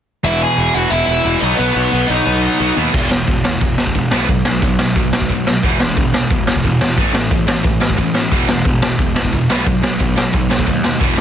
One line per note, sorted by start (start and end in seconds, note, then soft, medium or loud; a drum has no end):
0.24 0.45 E1 medium
0.24 0.56 E2 medium
0.24 0.57 B2 loud
0.24 0.57 E3 medium
0.24 0.41 E4 medium
0.24 0.42 E5 loud
0.42 0.74 G#4 medium
0.42 0.77 G#5 loud
0.57 0.68 E1 medium
0.57 0.74 E2 medium
0.57 0.74 B2 medium
0.57 0.73 E3 medium
0.74 0.85 E1 medium
0.74 0.90 E2 medium
0.74 0.90 B2 medium
0.74 0.91 E3 medium
0.74 0.92 F#4 medium
0.74 0.90 F#5 loud
0.90 1.02 E1 medium
0.90 1.23 E2 medium
0.90 1.24 B2 loud
0.90 1.24 E3 loud
0.90 1.08 E4 medium
0.90 1.05 E5 loud
1.06 1.19 E1 medium
1.06 1.40 E4 medium
1.06 1.40 E5 loud
1.25 1.35 E1 medium
1.25 1.41 E2 medium
1.25 1.40 B2 medium
1.25 1.41 E3 loud
1.41 1.52 B1 medium
1.41 1.58 B2 medium
1.41 1.57 F#3 medium
1.41 1.57 B3 loud
1.41 1.59 D#4 medium
1.41 1.57 D#5 medium
1.57 1.69 B1 medium
1.57 1.91 B2 medium
1.57 1.91 F#3 medium
1.57 1.91 B3 loud
1.57 1.75 B3 medium
1.57 1.72 B4 loud
1.73 1.86 B1 medium
1.73 2.07 B3 medium
1.73 2.07 B4 medium
1.92 2.03 B1 medium
1.92 2.08 B2 medium
1.92 2.08 F#3 medium
1.92 2.09 B3 medium
2.08 2.20 B1 medium
2.08 2.25 B2 medium
2.08 2.25 F#3 medium
2.08 2.24 B3 medium
2.08 2.73 D#4 medium
2.08 2.72 D#5 medium
2.25 2.47 B1 medium
2.25 2.59 B2 medium
2.25 2.59 F#3 medium
2.25 2.58 B3 medium
2.59 2.70 B1 medium
2.59 2.75 B2 medium
2.59 2.75 F#3 medium
2.59 2.76 B3 medium
2.76 2.87 D#2 medium
2.76 2.92 B2 medium
2.76 2.93 F#3 medium
2.76 2.93 B3 medium
2.93 3.07 E1 medium
2.93 3.09 E2 medium
2.93 3.09 B2 loud
2.93 3.10 E3 medium
2.93 kick loud
2.93 crash loud
3.10 3.24 E1 medium
3.10 3.26 E2 medium
3.10 3.26 B2 medium
3.10 snare loud
3.27 3.55 E1 medium
3.27 3.43 E2 medium
3.27 3.43 B2 medium
3.27 kick loud
3.27 open hi-hat medium
3.44 3.59 E2 medium
3.44 3.60 B2 medium
3.44 snare loud
3.61 3.75 E1 medium
3.61 3.76 E2 medium
3.61 3.76 B2 medium
3.61 kick loud
3.61 open hi-hat medium
3.78 3.92 E1 medium
3.78 3.93 E2 medium
3.78 3.93 B2 medium
3.78 snare loud
3.87 kick medium
3.94 4.09 E1 medium
3.94 4.10 E2 medium
3.94 4.10 B2 medium
3.94 kick loud
3.94 open hi-hat medium
4.11 4.26 B1 medium
4.11 4.27 B2 medium
4.11 4.28 F#3 medium
4.11 4.28 B3 medium
4.11 snare loud
4.28 4.42 B1 medium
4.28 4.44 B2 medium
4.28 4.44 F#3 medium
4.28 kick loud
4.28 open hi-hat medium
4.45 4.59 B1 medium
4.45 4.61 B2 medium
4.45 4.61 F#3 medium
4.45 snare loud
4.62 4.76 B1 medium
4.62 4.77 B2 medium
4.62 4.78 F#3 medium
4.62 kick loud
4.62 open hi-hat soft
4.79 4.93 B1 medium
4.79 4.94 B2 medium
4.79 4.95 F#3 medium
4.79 snare loud
4.96 5.10 B1 medium
4.96 5.11 B2 medium
4.96 5.12 F#3 medium
4.96 kick loud
4.96 open hi-hat soft
5.13 5.27 B1 loud
5.13 5.28 B2 medium
5.13 5.28 F#3 medium
5.13 snare loud
5.21 kick medium
5.30 5.57 B1 medium
5.30 5.45 B2 medium
5.30 5.45 F#3 medium
5.30 kick loud
5.30 open hi-hat medium
5.47 5.62 B2 medium
5.47 5.62 F#3 medium
5.47 snare loud
5.63 5.77 E1 medium
5.63 5.79 E2 medium
5.63 5.79 B2 medium
5.63 5.79 E3 medium
5.63 kick loud
5.63 open hi-hat soft
5.80 5.94 E1 medium
5.80 5.95 E2 medium
5.80 5.96 B2 medium
5.80 snare loud
5.97 6.24 E1 medium
5.97 6.12 E2 medium
5.97 6.12 B2 medium
5.97 kick loud
5.97 open hi-hat medium
6.14 6.29 E2 medium
6.14 6.29 B2 medium
6.14 snare loud
6.30 6.44 E1 medium
6.30 6.46 E2 medium
6.30 6.46 B2 medium
6.30 kick loud
6.30 open hi-hat medium
6.47 6.61 E1 medium
6.47 6.62 E2 medium
6.47 6.63 B2 medium
6.47 snare loud
6.55 kick medium
6.63 6.78 E1 medium
6.63 6.79 E2 medium
6.63 6.79 B2 medium
6.63 kick loud
6.63 open hi-hat medium
6.81 6.94 E1 medium
6.81 6.96 E2 medium
6.81 6.96 B2 medium
6.81 snare loud
6.97 7.11 A1 medium
6.97 7.12 A2 medium
6.97 7.12 E3 medium
6.97 7.14 A3 medium
6.97 kick loud
6.97 open hi-hat medium
7.13 7.28 A1 medium
7.13 7.29 A2 medium
7.13 7.29 E3 medium
7.13 snare loud
7.31 7.45 A1 medium
7.31 7.46 A2 medium
7.31 7.46 E3 medium
7.31 kick loud
7.31 open hi-hat medium
7.47 7.61 A1 medium
7.47 7.62 A2 medium
7.47 7.62 E3 medium
7.47 snare loud
7.63 7.78 A1 medium
7.63 7.79 A2 medium
7.63 7.79 E3 medium
7.63 kick loud
7.63 open hi-hat medium
7.80 7.95 A1 loud
7.80 7.95 A2 medium
7.80 7.96 E3 medium
7.80 snare loud
7.90 kick medium
7.97 8.26 A1 medium
7.97 8.13 A2 medium
7.97 8.13 E3 loud
7.97 kick loud
7.97 open hi-hat medium
8.14 8.29 A2 medium
8.14 8.30 E3 medium
8.14 snare loud
8.31 8.45 E1 medium
8.31 8.47 E2 medium
8.31 8.47 B2 medium
8.31 8.48 E3 loud
8.31 kick medium
8.31 open hi-hat soft
8.48 8.62 E1 medium
8.48 8.64 E2 medium
8.48 8.64 B2 medium
8.48 snare loud
8.65 8.93 E1 medium
8.65 8.81 E2 medium
8.65 8.81 B2 medium
8.65 kick loud
8.65 open hi-hat medium
8.82 8.97 E2 medium
8.82 8.98 B2 medium
8.82 snare loud
8.99 9.12 E1 loud
8.99 9.14 E2 medium
8.99 9.15 B2 medium
8.99 kick loud
8.99 open hi-hat medium
9.15 9.29 E1 medium
9.15 9.31 E2 medium
9.15 9.31 B2 medium
9.15 snare loud
9.24 kick medium
9.33 9.46 E1 medium
9.33 9.48 E2 medium
9.33 9.48 B2 loud
9.33 kick loud
9.33 open hi-hat medium
9.49 9.63 B1 medium
9.49 9.65 B2 medium
9.49 9.65 F#3 medium
9.49 9.66 B3 medium
9.49 snare loud
9.66 9.80 B1 medium
9.66 9.81 B2 medium
9.66 9.81 F#3 medium
9.66 kick loud
9.66 open hi-hat medium
9.83 9.97 B1 medium
9.83 9.98 B2 medium
9.83 9.98 F#3 medium
9.83 snare loud
9.99 10.14 B1 medium
9.99 10.15 B2 medium
9.99 10.15 F#3 medium
9.99 kick loud
9.99 open hi-hat medium
10.16 10.31 B1 medium
10.16 10.32 B2 medium
10.16 10.32 F#3 medium
10.16 snare loud
10.33 10.47 B1 medium
10.33 10.48 B2 medium
10.33 10.49 F#3 medium
10.33 kick loud
10.33 open hi-hat medium
10.50 10.64 B1 medium
10.50 10.65 B2 medium
10.50 10.66 F#3 medium
10.50 snare loud
10.59 kick medium
10.67 10.95 D#2 medium
10.67 10.82 B2 medium
10.67 10.82 F#3 medium
10.67 kick loud
10.67 open hi-hat medium
10.84 10.99 B2 medium
10.84 10.99 F#3 medium
10.84 snare loud
11.00 11.14 E1 medium
11.00 11.16 E2 medium
11.00 11.16 B2 medium
11.00 11.17 E3 medium
11.00 kick medium
11.00 open hi-hat soft
11.17 11.21 E1 medium
11.17 11.21 E2 medium
11.17 11.21 B2 medium